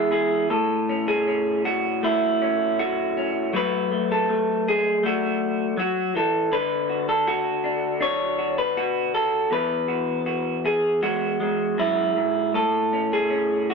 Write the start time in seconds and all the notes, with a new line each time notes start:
Already playing: E2 G#3 E4 G#4
0.12 E4 G#4
0.50 A2 A4
0.89 C#4
1.08 G#4
1.28 C#4
1.65 F#4
2.03 A3 E4
2.42 C#4
2.79 F#4
3.17 C#4
3.53 F#3 A3 F#4 B4
3.92 A3
4.12 A4
4.29 A3
4.68 G#4
5.03 A3 F#4
5.77 F#3 F#4
6.15 E3 A4
6.52 D3 B4
6.89 F#4
7.09 A4
7.28 F#4
7.64 D4
8.00 D4 C#5
8.39 F#4
8.58 B4
8.77 F#4
9.14 A4
9.51 E2 B4
9.88 F#4
10.26 F#4
10.66 G#4
11.03 G#3 F#4
11.40 G#3
11.78 F#2 E4
12.16 G#2
12.54 A2 A4
12.93 C#4
13.13 G#4
13.31 C#4
13.70 F#4